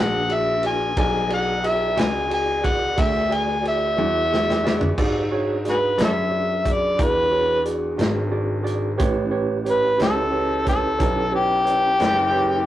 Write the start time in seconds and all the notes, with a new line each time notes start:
Already playing: A#1 D4 F#4 G#4 B4 D5
0.00 F#5
0.29 F#4 G#4 D5, ride
0.34 E5
0.63 F#4 G#4 D5 G#5, ride
0.96 B1 G3 F#4 G#4 A4 C5 D5 D#5 G#5, kick, ride
1.29 F#4 G#4 B4 D5, ride
1.33 F#5
1.63 F#4 G#4 E5, ride
1.96 C#2 F#4 G#4 D5, snare, ride
2.00 G#5
2.29 F#4 G#4 D5, ride
2.34 G#5
2.63 F#4 G#4 D5 F#5, kick, ride
2.96 D2 F#4 G#4 D5, kick, ride
3.01 E5
3.29 F#4 G#4 D5, ride
3.34 G#5
3.62 F#4 G#4 D5, ride
3.68 E5
3.97 E2 F#4 G#4 D5, high tom
4.31 F#4 G#4 D5, snare
4.50 snare
4.64 F#4 G#4 D5, snare
4.81 floor tom
4.98 G#2 D#4 F#4 G4 G#4 A4 C5 D5, kick, crash
5.31 D4 F#4 G#4 B4 C#5
5.65 F#4 G#4 D5, snare, closed hi-hat
5.69 F#4 G#4 B4
5.97 F#2 F#4 G#4 D5, snare, closed hi-hat
6.04 A4 C#5 E5
6.30 F#4 G#4 D5
6.63 F#4 G#4 D5, kick, closed hi-hat
6.72 D5
6.97 E2 F#4 G#4 D5, kick, closed hi-hat
7.03 B4
7.31 F#4 G#4 C#5
7.65 F#4 G#4 D5, closed hi-hat
7.97 G#1 F#4 G#4 D5, closed hi-hat
8.01 snare
8.31 F#4 G#4 D5
8.63 F#4 G#4 D5, closed hi-hat
8.98 A1 C#4 E4 G4 B4 C#5, kick, closed hi-hat
9.31 G4 B4 C#5
9.64 G4 B4 C#5, closed hi-hat
9.70 B4
9.97 C#2 G4 B4 C#5, closed hi-hat
10.02 A4, snare
10.31 G4 B4 C#5
10.64 G4 B4 C#5, kick, closed hi-hat
10.69 A4, snare
10.98 B1 G4 B4 C#5, kick, closed hi-hat
11.32 G4 B4 C#5
11.64 G4 B4 C#5, closed hi-hat
11.98 F#1 G4 B4 C#5, closed hi-hat
12.02 snare
12.32 G4 B4 C#5